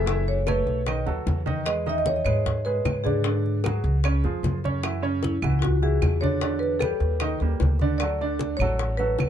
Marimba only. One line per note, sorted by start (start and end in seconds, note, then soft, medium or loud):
0.00 0.30 A4 loud
0.28 0.46 C#5 loud
0.49 1.43 B4 medium
1.66 1.88 D#5 loud
1.89 1.99 E5 medium
1.98 2.08 D#5 medium
2.07 2.17 C#5 loud
2.16 2.26 D#5 medium
2.25 2.66 C#5 loud
2.65 3.06 B4 medium
3.04 4.59 G#4 medium
5.23 5.55 E4 medium
5.59 5.63 F4 medium
5.59 5.81 F#4 medium
5.83 6.23 G#4 medium
6.21 6.58 C#5 loud
6.59 6.81 B4 medium
6.79 7.75 A4 medium
7.98 8.60 D5 loud
8.57 8.99 C#5 medium
8.97 9.29 B4 medium